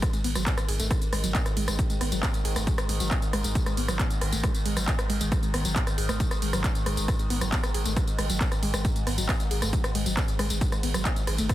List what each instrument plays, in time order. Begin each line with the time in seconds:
Already playing: synth drone G#2 D#3
0.02 synth arpeggio sound G#3, kick, cross-stick, closed hi-hat
0.13 synth arpeggio sound G#3, closed hi-hat, tambourine
0.24 sub bass G#1, synth arpeggio sound B3, open hi-hat, ride
0.35 sub bass G#1, synth arpeggio sound F#3, cross-stick, closed hi-hat, tambourine
0.46 synth arpeggio sound B3, kick, clap, closed hi-hat
0.58 cross-stick, closed hi-hat, tambourine
0.68 sub bass G#1, synth arpeggio sound G#4, open hi-hat, ride
0.80 sub bass G#1, synth arpeggio sound A3, closed hi-hat, tambourine
0.91 synth arpeggio sound G#3, kick, cross-stick, closed hi-hat
1.02 closed hi-hat, tambourine
1.13 sub bass G#1, synth arpeggio sound G#3, cross-stick, open hi-hat, ride
1.24 sub bass G#1, synth arpeggio sound F#3, closed hi-hat, tambourine
1.35 synth arpeggio sound B3, kick, clap, closed hi-hat
1.46 cross-stick, closed hi-hat, tambourine
1.57 sub bass G#1, synth arpeggio sound G#3, open hi-hat, ride
1.68 sub bass G#1, synth arpeggio sound G#3, cross-stick, closed hi-hat, tambourine
1.79 kick, closed hi-hat
1.90 synth arpeggio sound G#3, closed hi-hat, tambourine
2.01 sub bass G#1, synth arpeggio sound B3, cross-stick, open hi-hat, ride
2.12 sub bass G#1, synth arpeggio sound F#3, closed hi-hat, tambourine
2.23 synth arpeggio sound B3, kick, cross-stick, clap, closed hi-hat
2.34 closed hi-hat, tambourine
2.45 sub bass G#1, synth arpeggio sound G#4, open hi-hat, ride
2.56 sub bass G#1, synth arpeggio sound A3, cross-stick, closed hi-hat, tambourine
2.67 synth arpeggio sound G#3, kick, closed hi-hat
2.78 cross-stick, closed hi-hat, tambourine
2.89 sub bass G#1, synth arpeggio sound G#3, open hi-hat, ride
3.00 sub bass G#1, synth arpeggio sound F#3, closed hi-hat, tambourine
3.11 synth arpeggio sound B3, kick, cross-stick, clap, closed hi-hat
3.22 closed hi-hat, tambourine
3.33 sub bass G#1, synth arpeggio sound G#3, cross-stick, open hi-hat, ride
3.44 sub bass G#1, synth arpeggio sound G#3, closed hi-hat, tambourine
3.55 synth arpeggio sound G#3, kick, closed hi-hat, tambourine
3.66 synth arpeggio sound G#3, cross-stick, closed hi-hat, tambourine
3.77 sub bass G#1, synth arpeggio sound B3, open hi-hat, ride
3.88 sub bass G#1, synth arpeggio sound F#3, cross-stick, closed hi-hat, tambourine
3.99 synth arpeggio sound B3, kick, clap, closed hi-hat, tambourine
4.10 closed hi-hat, tambourine
4.21 sub bass G#1, synth arpeggio sound G#4, cross-stick, open hi-hat, ride
4.32 sub bass G#1, synth arpeggio sound A3, closed hi-hat, tambourine
4.43 synth arpeggio sound G#3, kick, cross-stick, closed hi-hat
4.55 closed hi-hat, tambourine
4.66 sub bass G#1, synth arpeggio sound G#3, open hi-hat, ride
4.77 sub bass G#1, synth arpeggio sound F#3, cross-stick, closed hi-hat, tambourine
4.88 synth arpeggio sound B3, kick, clap, closed hi-hat
4.99 cross-stick, closed hi-hat, tambourine
5.10 sub bass G#1, synth arpeggio sound G#3, open hi-hat, ride
5.21 sub bass G#1, synth arpeggio sound G#3, closed hi-hat, tambourine
5.32 kick, cross-stick, closed hi-hat, tambourine
5.43 synth arpeggio sound G#3, closed hi-hat, tambourine
5.54 sub bass G#1, synth arpeggio sound B3, cross-stick, open hi-hat, ride
5.65 sub bass G#1, synth arpeggio sound F#3, closed hi-hat, tambourine
5.76 synth arpeggio sound B3, kick, clap, closed hi-hat
5.87 cross-stick, closed hi-hat, tambourine
5.98 sub bass G#1, synth arpeggio sound G#4, open hi-hat, ride
6.09 sub bass G#1, synth arpeggio sound A3, cross-stick, closed hi-hat, tambourine
6.20 synth arpeggio sound G#3, kick, closed hi-hat, tambourine
6.31 cross-stick, closed hi-hat, tambourine
6.42 sub bass G#1, synth arpeggio sound G#3, open hi-hat, ride
6.53 sub bass G#1, synth arpeggio sound F#3, cross-stick, closed hi-hat, tambourine
6.64 kick, clap, closed hi-hat, tambourine
6.75 closed hi-hat, tambourine
6.86 sub bass G#1, synth arpeggio sound G#3, cross-stick, open hi-hat, ride
6.97 sub bass G#1, synth arpeggio sound G#3, closed hi-hat, tambourine
7.08 kick, cross-stick, closed hi-hat
7.19 synth arpeggio sound G#3, closed hi-hat, tambourine
7.30 sub bass G#1, synth arpeggio sound B3, open hi-hat, ride
7.41 sub bass G#1, synth arpeggio sound F#3, cross-stick, closed hi-hat, tambourine
7.52 synth arpeggio sound B3, kick, clap, closed hi-hat, tambourine
7.63 cross-stick, closed hi-hat, tambourine
7.74 sub bass G#1, synth arpeggio sound G#4, open hi-hat, ride
7.85 sub bass G#1, synth arpeggio sound A3, closed hi-hat, tambourine
7.96 synth arpeggio sound G#3, kick, cross-stick, closed hi-hat, tambourine
8.08 closed hi-hat, tambourine
8.18 sub bass G#1, synth arpeggio sound G#3, cross-stick, open hi-hat, ride
8.29 sub bass G#1, synth arpeggio sound F#3, closed hi-hat, tambourine
8.41 synth arpeggio sound B3, kick, clap, closed hi-hat
8.52 cross-stick, closed hi-hat, tambourine
8.63 sub bass G#1, synth arpeggio sound G#3, open hi-hat, ride
8.74 sub bass G#1, synth arpeggio sound G#3, cross-stick, closed hi-hat, tambourine
8.85 synth arpeggio sound G#3, kick, closed hi-hat, tambourine
8.96 synth arpeggio sound G#3, closed hi-hat, tambourine
9.07 sub bass G#1, synth arpeggio sound B3, cross-stick, open hi-hat, ride
9.18 sub bass G#1, synth arpeggio sound F#3, closed hi-hat, tambourine
9.29 synth arpeggio sound B3, kick, cross-stick, clap, closed hi-hat
9.40 closed hi-hat, tambourine
9.51 sub bass G#1, synth arpeggio sound G#4, open hi-hat, ride
9.62 sub bass G#1, synth arpeggio sound A3, cross-stick, closed hi-hat, tambourine
9.73 synth arpeggio sound G#3, kick, closed hi-hat
9.84 cross-stick, closed hi-hat, tambourine
9.95 sub bass G#1, synth arpeggio sound G#3, open hi-hat, ride
10.06 sub bass G#1, synth arpeggio sound F#3, closed hi-hat, tambourine
10.17 synth arpeggio sound B3, kick, cross-stick, clap, closed hi-hat
10.28 closed hi-hat, tambourine
10.39 sub bass G#1, synth arpeggio sound G#3, cross-stick, open hi-hat, ride
10.50 sub bass G#1, synth arpeggio sound G#3, closed hi-hat, tambourine
10.61 kick, closed hi-hat
10.72 synth arpeggio sound G#3, cross-stick, closed hi-hat, tambourine
10.83 sub bass G#1, synth arpeggio sound B3, open hi-hat, ride
10.94 sub bass G#1, synth arpeggio sound F#3, cross-stick, closed hi-hat, tambourine
11.05 synth arpeggio sound B3, kick, clap, closed hi-hat
11.16 closed hi-hat, tambourine
11.27 sub bass G#1, synth arpeggio sound G#4, cross-stick, open hi-hat, ride
11.38 sub bass G#1, synth arpeggio sound A3, closed hi-hat, tambourine
11.49 synth arpeggio sound G#3, kick, cross-stick, closed hi-hat, tambourine